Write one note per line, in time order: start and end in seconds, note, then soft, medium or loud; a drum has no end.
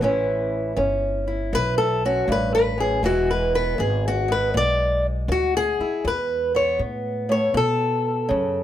0.00 0.74 A1 medium
0.00 0.72 A2 medium
0.00 0.76 E3 medium
0.00 0.76 C#4 medium
0.00 1.27 E4 medium
0.00 0.78 B4 loud
0.77 1.50 G1 medium
0.77 1.47 E3 medium
0.77 2.02 C#4 soft
1.28 2.05 E4 soft
1.53 2.26 B1 medium
1.53 2.23 E3 medium
1.53 1.77 B4 loud
1.78 2.03 A4 loud
2.05 3.01 C#4 soft
2.05 2.29 F#4 loud
2.28 3.01 A1 medium
2.28 2.77 G2 medium
2.32 2.54 B4 loud
2.55 2.79 B4 loud
2.78 3.03 F#2 medium
2.78 3.04 G#4 medium
3.03 3.76 E1 medium
3.03 3.74 E2 medium
3.03 3.77 E3 medium
3.03 4.27 G#3 medium
3.03 3.29 E4 medium
3.03 3.29 F#4 loud
3.31 3.54 B4 medium
3.55 3.80 B3 soft
3.55 3.79 B4 loud
3.78 4.52 G#1 medium
3.78 4.48 E3 medium
3.78 4.04 G#4 medium
4.08 4.31 F#4 loud
4.28 8.63 G#3 soft
4.28 4.55 B4 medium
4.54 5.27 B1 medium
4.54 5.24 B2 medium
4.54 5.05 D5 loud
5.28 5.75 D2 medium
5.28 5.99 E3 medium
5.28 5.55 F#4 loud
5.57 6.06 G#4 loud
5.79 6.05 E4 soft
5.79 muted upright bass stroke soft
6.04 6.78 E2 medium
6.04 6.75 E2 medium
6.04 6.56 B4 medium
6.55 8.63 B3 soft
6.55 6.80 C#5 medium
6.79 7.53 A2 medium
7.29 7.55 A2 medium
7.29 7.56 C#5 medium
7.54 8.28 B2 medium
7.54 8.25 B2 medium
7.54 8.63 A4 loud
8.29 8.63 F#2 medium
8.29 8.63 C#3 medium